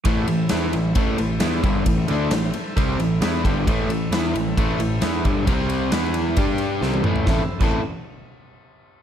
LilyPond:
<<
  \new Staff \with { instrumentName = "Tonewheel organ" } { \time 4/4 \key a \minor \tempo 4 = 133 <e' a' c''>1~ | <e' a' c''>1 | <e' a' c''>1 | <c' g' c''>4 <b e' b'>4 <d' g' d''>4 <e' a' c''>4 |
<e' a' c''>8 r2. r8 | }
  \new Staff \with { instrumentName = "Overdriven electric guitar" } { \clef bass \time 4/4 \key a \minor <a, e a>8 <a, e>8 <e b e'>8 <a, e>8 <a, e a>8 <a, e>8 <e b e'>8 <g, d g>8 | <a, e>8 <d a d'>8 <a, e>8 r8 <c g c'>8 <a, e>8 <e b e'>8 <g, d g>8 | <a, e a>8 <a, e>8 <e b e'>8 <a, e>8 <a, e a>8 <a, e>8 <e b e'>8 <g, d g>8 | <c g c'>4 <e b e'>4 <g d' g'>4 <c g c'>8 <a, e a>8 |
<a, a c' e' a'>16 r8 <a, a c' e' a'>8 r2 r8. | }
  \new Staff \with { instrumentName = "Overdriven electric guitar" } { \clef bass \time 4/4 \key a \minor <a, e a>8 <a, e>8 <e b e'>8 <a, e>8 <a, e a>8 <a, e>8 <e b e'>8 <g, d g>8 | <a, e>8 <d a d'>8 <a, e>8 r8 <c g c'>8 <a, e>8 <e b e'>8 <g, d g>8 | <a, e a>8 <a, e>8 <e b e'>8 <a, e>8 <a, e a>8 <a, e>8 <e b e'>8 <g, d g>8 | <c g c'>4 <e b e'>4 <g d' g'>4 <c g c'>8 <a, e a>8 |
<a, e a c' e'>16 r8 <a, e a c' e'>8 r2 r8. | }
  \new Staff \with { instrumentName = "Picked electric bass" } { \clef bass \time 4/4 \key a \minor a,,8 a,,8 e,8 a,,8 a,,8 a,,8 e,8 g,,8 | a,,8 d,8 a,,8 r8 c,8 a,,8 e,8 g,,8 | a,,8 a,,8 e,8 a,,8 a,,8 a,,8 e,8 g,,8 | c,4 e,4 g,4 c,8 a,,8 |
a,,16 r8 a,,8 r2 r8. | }
  \new DrumStaff \with { instrumentName = "Drums" } \drummode { \time 4/4 <bd cymr>8 cymr8 <cymr sn>8 cymr8 <bd cymr>8 cymr8 <cymr sn>8 <bd cymr>8 | <bd cymr>8 cymr8 <cymr sn>8 cymr8 <bd cymr>8 cymr8 <cymr sn>8 <bd cymr>8 | <bd cymr>8 cymr8 <cymr sn>8 cymr8 <bd cymr>8 cymr8 <cymr sn>8 <bd cymr>8 | <bd cymr>8 cymr8 <cymr sn>8 cymr8 <bd cymr>8 cymr8 sn16 tommh16 toml16 tomfh16 |
<bd sn>8. <cymc bd>16 r4 r4 r4 | }
>>